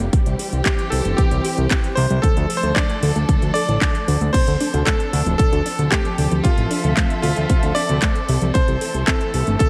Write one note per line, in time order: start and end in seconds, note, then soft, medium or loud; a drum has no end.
0.00 0.11 D3 medium
0.00 2.20 G3 medium
0.00 0.11 A#3 medium
0.00 0.12 A#3 loud
0.00 0.11 G4 medium
0.00 closed hi-hat soft
0.13 0.18 C3 medium
0.13 2.21 E3 medium
0.13 2.22 C4 medium
0.13 2.21 G4 medium
0.13 kick loud
0.13 closed hi-hat medium
0.26 0.36 C2 medium
0.26 closed hi-hat soft
0.39 0.48 G4 medium
0.39 open hi-hat loud
0.53 0.62 C2 medium
0.53 0.65 C3 medium
0.53 closed hi-hat soft
0.64 0.78 C4 medium
0.64 0.92 G4 medium
0.64 kick loud
0.64 clap loud
0.64 closed hi-hat medium
0.79 closed hi-hat soft
0.90 1.01 C2 loud
0.90 1.01 C3 medium
0.90 1.18 A4 medium
0.90 open hi-hat loud
1.05 1.14 G1 medium
1.05 1.18 G3 medium
1.05 closed hi-hat soft
1.17 1.24 C3 medium
1.17 1.99 G4 medium
1.17 kick loud
1.17 closed hi-hat medium
1.31 1.41 C2 medium
1.31 closed hi-hat soft
1.45 1.54 G4 medium
1.45 open hi-hat loud
1.58 1.67 C2 medium
1.58 1.70 C3 medium
1.58 closed hi-hat soft
1.71 1.83 C4 medium
1.71 kick loud
1.71 clap loud
1.71 closed hi-hat medium
1.84 closed hi-hat soft
1.95 2.07 C2 loud
1.95 2.06 C3 medium
1.95 2.21 C5 loud
1.95 open hi-hat loud
2.10 2.20 C2 medium
2.10 2.23 G3 loud
2.10 closed hi-hat soft
2.22 2.29 D3 medium
2.22 4.32 F3 medium
2.22 4.32 A3 medium
2.22 4.32 D4 medium
2.22 2.59 A4 loud
2.22 4.32 A4 medium
2.22 kick loud
2.22 closed hi-hat medium
2.37 2.46 D2 medium
2.37 closed hi-hat soft
2.50 2.59 A4 medium
2.50 open hi-hat loud
2.57 2.76 C5 loud
2.63 2.72 D2 medium
2.63 2.75 D3 medium
2.63 closed hi-hat soft
2.75 2.89 D4 medium
2.75 3.52 D5 loud
2.75 kick loud
2.75 clap loud
2.75 closed hi-hat medium
2.90 closed hi-hat soft
3.03 3.12 D2 loud
3.03 3.11 D3 medium
3.03 open hi-hat loud
3.16 3.25 D2 medium
3.16 3.28 A3 medium
3.16 closed hi-hat soft
3.29 3.34 D3 medium
3.29 kick loud
3.29 closed hi-hat medium
3.42 3.51 D2 medium
3.42 closed hi-hat soft
3.54 3.64 A4 medium
3.54 4.29 D5 loud
3.54 open hi-hat medium
3.68 3.78 A1 medium
3.68 3.81 D3 medium
3.68 closed hi-hat soft
3.81 3.94 D4 medium
3.81 kick loud
3.81 clap loud
3.81 closed hi-hat medium
3.95 closed hi-hat soft
4.08 4.17 D2 loud
4.08 4.17 D3 medium
4.08 open hi-hat loud
4.21 4.30 D2 medium
4.21 4.34 A3 loud
4.21 closed hi-hat soft
4.33 4.40 C3 medium
4.33 8.51 F3 medium
4.33 9.69 C4 medium
4.33 6.42 D4 medium
4.33 9.69 A4 medium
4.33 4.82 C5 loud
4.33 kick loud
4.33 closed hi-hat loud
4.33 crash loud
4.47 4.57 D2 medium
4.47 closed hi-hat soft
4.60 4.69 D4 medium
4.60 open hi-hat loud
4.74 4.83 D2 medium
4.74 4.86 C3 medium
4.74 closed hi-hat soft
4.85 4.99 A3 medium
4.85 5.35 A4 loud
4.85 kick loud
4.85 clap loud
4.85 closed hi-hat loud
5.00 closed hi-hat soft
5.13 5.22 D2 loud
5.13 5.22 C3 medium
5.13 open hi-hat loud
5.26 5.36 D1 medium
5.26 5.39 F3 loud
5.26 closed hi-hat soft
5.38 5.45 C3 medium
5.38 5.93 A4 loud
5.38 kick loud
5.38 closed hi-hat medium
5.53 5.62 D2 medium
5.53 closed hi-hat soft
5.66 5.75 D4 medium
5.66 open hi-hat loud
5.79 5.88 D2 medium
5.79 5.91 C3 medium
5.79 closed hi-hat soft
5.91 6.04 A3 medium
5.91 6.46 G4 loud
5.91 kick loud
5.91 clap loud
5.91 closed hi-hat loud
6.05 closed hi-hat soft
6.18 6.28 D2 loud
6.18 6.27 C3 medium
6.18 open hi-hat loud
6.31 6.41 D2 medium
6.31 6.44 F3 loud
6.31 closed hi-hat soft
6.44 6.50 C3 medium
6.44 7.21 F4 loud
6.44 8.53 E5 medium
6.44 kick loud
6.44 closed hi-hat medium
6.58 6.67 A1 medium
6.58 closed hi-hat soft
6.71 6.80 D4 medium
6.71 open hi-hat loud
6.84 6.93 D2 medium
6.84 6.97 C3 medium
6.84 closed hi-hat soft
6.97 7.10 A3 medium
6.97 kick loud
6.97 clap loud
6.97 closed hi-hat medium
7.10 closed hi-hat soft
7.22 7.33 D2 loud
7.22 7.32 C3 medium
7.22 7.72 F4 loud
7.22 open hi-hat loud
7.36 7.46 D2 medium
7.36 7.49 F3 loud
7.36 closed hi-hat soft
7.50 7.55 C3 medium
7.50 kick loud
7.50 closed hi-hat medium
7.63 7.72 D2 medium
7.63 closed hi-hat soft
7.75 7.85 D4 medium
7.75 8.50 D5 loud
7.75 open hi-hat loud
7.89 7.99 D2 medium
7.89 8.02 C3 medium
7.89 closed hi-hat soft
8.02 8.15 A3 medium
8.02 kick loud
8.02 clap loud
8.02 closed hi-hat loud
8.16 closed hi-hat soft
8.29 8.38 C2 loud
8.29 8.38 C3 medium
8.29 open hi-hat loud
8.42 8.51 C2 medium
8.42 8.54 F3 loud
8.42 closed hi-hat soft
8.54 8.60 C3 medium
8.54 9.69 E3 medium
8.54 9.69 A3 medium
8.54 9.03 C5 loud
8.54 kick loud
8.54 closed hi-hat medium
8.68 8.78 C2 medium
8.68 closed hi-hat soft
8.81 8.90 A4 medium
8.81 open hi-hat loud
8.94 9.04 C2 medium
8.94 9.07 C3 medium
8.94 closed hi-hat soft
9.07 9.20 C4 medium
9.07 9.58 A4 loud
9.07 kick loud
9.07 clap loud
9.07 closed hi-hat medium
9.21 closed hi-hat soft
9.34 9.43 C2 loud
9.34 9.43 C3 medium
9.34 open hi-hat loud
9.47 9.57 G1 medium
9.47 9.60 A3 medium
9.47 closed hi-hat soft
9.59 9.66 C3 medium
9.59 9.69 A4 loud
9.59 kick loud
9.59 closed hi-hat medium